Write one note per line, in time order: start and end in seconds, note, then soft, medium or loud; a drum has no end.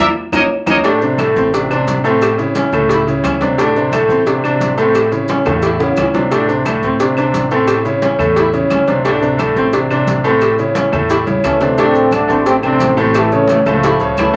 0.00 0.11 E2 loud
0.00 0.08 E5 medium
0.32 0.46 D#2 loud
0.32 0.44 A#3 loud
0.32 0.44 C#4 loud
0.32 0.44 D#4 loud
0.32 0.43 A#4 medium
0.32 0.43 C#5 medium
0.32 0.43 D#5 medium
0.32 low bongo loud
0.32 high conga loud
0.32 claves loud
0.32 maracas loud
0.66 0.80 D#2 medium
0.66 0.78 A#3 loud
0.66 0.78 C#4 loud
0.66 0.78 D#4 loud
0.66 0.77 A#4 loud
0.66 0.77 C#5 medium
0.66 0.77 D#5 medium
0.66 low bongo medium
0.66 high conga loud
0.66 claves loud
0.66 maracas loud
0.83 0.98 A2 medium
0.83 0.98 A3 medium
0.83 1.20 D4 loud
0.83 0.98 A4 medium
0.83 cowbell loud
0.83 high conga soft
0.83 maracas medium
1.01 1.16 C3 medium
1.01 1.16 C4 medium
1.01 1.16 D4 medium
1.01 high conga soft
1.01 maracas soft
1.17 1.46 A2 medium
1.17 1.46 A3 medium
1.17 1.47 A4 medium
1.17 cowbell medium
1.17 high conga medium
1.17 claves medium
1.17 maracas medium
1.35 1.84 A1 loud
1.35 1.59 C4 medium
1.35 maracas soft
1.53 1.67 C3 medium
1.53 1.67 C4 medium
1.53 1.67 D4 medium
1.53 cowbell loud
1.53 high conga soft
1.53 maracas medium
1.70 1.98 C3 medium
1.70 1.98 C4 medium
1.70 1.98 D4 medium
1.70 1.95 D4 medium
1.70 high conga soft
1.70 claves medium
1.70 maracas soft
1.87 2.67 A1 medium
1.87 cowbell medium
1.87 high conga medium
1.87 maracas medium
2.03 2.32 A2 medium
2.03 2.32 A3 medium
2.03 2.41 C4 medium
2.03 2.33 A4 medium
2.03 high conga soft
2.03 maracas soft
2.21 cowbell loud
2.21 high conga soft
2.21 claves medium
2.21 maracas medium
2.38 2.66 C#3 medium
2.38 2.67 C#4 medium
2.38 2.67 E4 medium
2.38 high conga soft
2.38 maracas soft
2.55 2.80 C#4 medium
2.55 cowbell medium
2.55 high conga medium
2.55 maracas medium
2.72 3.20 C#2 medium
2.72 3.01 A2 medium
2.72 3.01 A3 medium
2.72 3.01 A4 medium
2.72 high conga soft
2.72 low conga medium
2.72 claves medium
2.72 maracas soft
2.89 3.14 E4 medium
2.89 cowbell loud
2.89 high conga soft
2.89 maracas medium
3.07 3.35 C#3 medium
3.07 3.35 C#4 medium
3.07 3.35 E4 medium
3.07 high conga soft
3.07 maracas soft
3.24 4.04 D2 medium
3.24 3.48 C#4 medium
3.24 cowbell medium
3.24 high conga medium
3.24 claves medium
3.24 maracas medium
3.41 3.55 C3 medium
3.41 3.55 C4 medium
3.41 3.55 D4 medium
3.41 cowbell medium
3.41 high conga medium
3.41 maracas soft
3.57 3.72 A2 medium
3.57 3.72 A3 medium
3.57 3.94 D4 medium
3.57 3.73 A4 medium
3.57 cowbell loud
3.57 high conga soft
3.57 maracas medium
3.76 3.90 C3 medium
3.76 3.90 C4 medium
3.76 3.90 D4 medium
3.76 high conga soft
3.76 maracas soft
3.92 4.20 A2 medium
3.92 4.20 A3 medium
3.92 4.21 A4 medium
3.92 cowbell medium
3.92 high conga medium
3.92 claves medium
3.92 maracas medium
4.08 4.57 A1 loud
4.08 4.33 C4 medium
4.08 maracas soft
4.26 4.40 C3 medium
4.26 4.41 C4 medium
4.26 4.41 D4 medium
4.26 cowbell loud
4.26 high conga soft
4.26 maracas medium
4.43 4.72 C3 medium
4.43 4.72 C4 medium
4.43 4.67 D4 medium
4.43 4.72 D4 medium
4.43 high conga soft
4.43 claves medium
4.43 maracas soft
4.60 5.40 A1 medium
4.60 cowbell medium
4.60 high conga medium
4.60 maracas medium
4.77 5.06 A2 medium
4.77 5.06 A3 medium
4.77 5.15 C4 medium
4.77 5.06 A4 medium
4.77 high conga soft
4.77 maracas soft
4.95 cowbell loud
4.95 high conga soft
4.95 claves medium
4.95 maracas medium
5.11 5.40 C#3 medium
5.11 5.40 C#4 medium
5.11 5.40 E4 medium
5.11 high conga soft
5.11 maracas soft
5.28 5.53 C#4 medium
5.28 cowbell medium
5.28 high conga loud
5.28 maracas medium
5.45 5.94 E2 loud
5.45 5.74 A2 medium
5.45 5.74 A3 medium
5.45 5.75 A4 medium
5.45 high bongo loud
5.45 high conga soft
5.45 low conga medium
5.45 claves medium
5.45 maracas soft
5.62 5.87 E4 medium
5.62 cowbell loud
5.62 high conga soft
5.62 maracas medium
5.80 6.08 C#3 medium
5.80 6.08 C#4 medium
5.80 6.09 E4 medium
5.80 high bongo medium
5.80 high conga soft
5.80 maracas soft
5.96 6.77 D2 medium
5.96 6.22 C#4 medium
5.96 cowbell medium
5.96 low bongo medium
5.96 high conga medium
5.96 claves medium
5.96 maracas medium
6.14 6.28 C3 medium
6.14 6.28 C4 medium
6.14 6.29 D4 medium
6.14 cowbell medium
6.14 low bongo medium
6.14 high conga medium
6.14 maracas soft
6.31 6.45 A2 medium
6.31 6.46 A3 medium
6.31 6.68 D4 medium
6.31 6.46 A4 medium
6.31 cowbell loud
6.31 maracas medium
6.48 6.62 C3 medium
6.48 6.62 C4 medium
6.48 6.62 D4 medium
6.48 high conga soft
6.48 maracas soft
6.65 6.93 A2 medium
6.65 6.94 A3 medium
6.65 6.94 A4 medium
6.65 cowbell medium
6.65 high conga medium
6.65 claves medium
6.65 maracas medium
6.83 7.30 D2 medium
6.83 7.07 C4 medium
6.83 maracas soft
7.00 7.14 C3 medium
7.00 7.14 C4 medium
7.00 7.15 D4 medium
7.00 cowbell loud
7.00 high conga soft
7.00 maracas medium
7.17 7.45 C3 medium
7.17 7.45 C4 medium
7.17 7.41 D4 medium
7.17 7.46 D4 medium
7.17 high conga soft
7.17 claves medium
7.17 maracas soft
7.34 8.14 A1 medium
7.34 cowbell medium
7.34 high conga medium
7.34 maracas medium
7.51 7.79 A2 medium
7.51 7.79 A3 medium
7.51 7.87 C4 medium
7.51 7.79 A4 medium
7.51 high conga soft
7.51 maracas soft
7.67 cowbell loud
7.67 high conga soft
7.67 claves medium
7.67 maracas medium
7.85 8.13 C#3 medium
7.85 8.13 C#4 medium
7.85 8.13 E4 medium
7.85 high conga soft
7.85 maracas soft
8.02 8.26 C#4 medium
8.02 cowbell medium
8.02 high conga medium
8.02 maracas medium
8.18 8.67 E2 loud
8.18 8.47 A2 medium
8.18 8.47 A3 medium
8.18 8.47 A4 medium
8.18 high conga soft
8.18 low conga medium
8.18 claves medium
8.18 maracas soft
8.36 8.61 E4 medium
8.36 cowbell loud
8.36 high conga soft
8.36 maracas medium
8.53 8.82 C#3 medium
8.53 8.81 C#4 medium
8.53 8.82 E4 medium
8.53 high conga soft
8.53 maracas soft
8.70 9.50 D2 medium
8.70 8.95 C#4 medium
8.70 cowbell medium
8.70 high conga medium
8.70 claves medium
8.70 maracas medium
8.87 9.02 C3 medium
8.87 9.02 C4 medium
8.87 9.02 D4 medium
8.87 cowbell medium
8.87 high conga medium
8.87 maracas soft
9.04 9.19 A2 medium
9.04 9.19 A3 medium
9.04 9.41 D4 loud
9.04 9.19 A4 medium
9.04 cowbell loud
9.04 high conga soft
9.04 maracas medium
9.22 9.36 C3 medium
9.22 9.36 C4 medium
9.22 9.36 D4 medium
9.22 high conga soft
9.22 maracas soft
9.38 9.67 A2 medium
9.38 9.67 A3 medium
9.38 9.67 A4 medium
9.38 cowbell medium
9.38 high conga medium
9.38 claves medium
9.38 maracas medium
9.56 10.04 A1 loud
9.56 9.80 C4 medium
9.56 maracas soft
9.73 9.87 C3 medium
9.73 9.87 C4 medium
9.73 9.87 D4 medium
9.73 cowbell loud
9.73 high conga soft
9.73 maracas medium
9.90 10.18 C3 medium
9.90 10.18 C4 medium
9.90 10.14 D4 medium
9.90 10.19 D4 medium
9.90 high conga soft
9.90 claves medium
9.90 maracas soft
10.07 10.87 A1 medium
10.07 cowbell medium
10.07 high conga medium
10.07 maracas medium
10.24 10.52 A2 medium
10.24 10.52 A3 loud
10.24 10.60 C4 medium
10.24 10.53 A4 medium
10.24 high conga soft
10.24 maracas soft
10.41 cowbell loud
10.41 high conga soft
10.41 claves medium
10.41 maracas medium
10.58 10.87 C#3 medium
10.58 10.87 C#4 medium
10.58 10.87 E4 medium
10.58 high conga soft
10.58 maracas soft
10.74 10.99 C#4 medium
10.74 cowbell medium
10.74 high conga loud
10.74 maracas medium
10.92 11.40 E2 loud
10.92 11.20 A2 medium
10.92 11.21 A3 medium
10.92 11.21 A4 medium
10.92 high conga soft
10.92 low conga medium
10.92 claves medium
10.92 maracas soft
11.08 11.33 E4 medium
11.08 cowbell loud
11.08 high conga soft
11.08 maracas medium
11.26 11.55 C#3 medium
11.26 11.55 C#4 medium
11.26 11.55 E4 medium
11.26 high conga loud
11.26 maracas soft
11.44 12.24 D2 medium
11.44 11.76 E3 medium
11.44 11.76 A3 loud
11.44 11.68 C#4 medium
11.44 cowbell medium
11.44 high conga medium
11.44 claves medium
11.44 maracas medium
11.61 11.75 C3 medium
11.61 11.75 C4 medium
11.61 11.75 D4 medium
11.61 cowbell medium
11.61 low conga medium
11.61 maracas soft
11.78 12.06 A2 medium
11.78 12.06 A3 medium
11.78 12.12 A3 medium
11.78 12.13 C4 loud
11.78 12.14 D4 loud
11.78 12.06 A4 medium
11.78 cowbell loud
11.78 high conga soft
11.78 maracas medium
11.94 high conga soft
11.94 maracas soft
12.11 12.26 D3 medium
12.11 12.45 A3 medium
12.11 12.26 D4 medium
12.11 12.47 D4 loud
12.11 12.26 D5 medium
12.11 cowbell medium
12.11 high conga medium
12.11 claves medium
12.11 maracas medium
12.28 12.77 A1 loud
12.28 12.57 A3 medium
12.28 12.53 C4 medium
12.28 12.57 A4 medium
12.28 12.57 A5 medium
12.28 maracas soft
12.46 12.54 A3 medium
12.46 12.54 C4 loud
12.46 cowbell loud
12.46 high conga soft
12.46 maracas medium
12.62 12.91 C3 medium
12.62 12.96 A3 medium
12.62 12.91 C4 medium
12.62 12.95 C4 loud
12.62 12.88 D4 medium
12.62 12.92 C5 medium
12.62 high conga soft
12.62 claves medium
12.62 maracas soft
12.79 13.61 A1 medium
12.79 cowbell medium
12.79 high conga medium
12.79 maracas medium
12.96 13.25 A2 medium
12.96 13.25 A3 loud
12.96 13.33 C4 medium
12.96 13.25 A4 medium
12.96 high conga soft
12.96 maracas soft
13.13 13.48 E3 medium
13.13 13.47 A3 loud
13.13 cowbell loud
13.13 high conga soft
13.13 claves medium
13.13 maracas medium
13.30 13.60 C#3 medium
13.30 13.60 C#4 medium
13.30 13.61 C#5 medium
13.30 high conga soft
13.30 maracas soft
13.48 13.58 E3 medium
13.48 13.73 A3 medium
13.48 13.57 A3 loud
13.48 cowbell medium
13.48 high conga loud
13.48 maracas medium
13.66 13.98 C#2 loud
13.66 13.94 A2 medium
13.66 14.14 F3 medium
13.66 14.14 A3 loud
13.66 13.94 A3 medium
13.66 13.94 A4 medium
13.66 high conga soft
13.66 low conga medium
13.66 claves medium
13.66 maracas soft
13.83 14.07 E4 medium
13.83 cowbell loud
13.83 high conga soft
13.83 maracas medium
14.00 14.16 C#2 medium
14.00 14.28 C#3 medium
14.00 14.28 C#4 medium
14.00 14.28 C#5 medium
14.00 high conga soft
14.00 maracas soft
14.17 14.36 D2 medium
14.17 14.36 E3 medium
14.17 14.36 A3 loud
14.17 14.36 E4 medium
14.17 cowbell medium
14.17 high conga medium
14.17 claves medium
14.17 maracas medium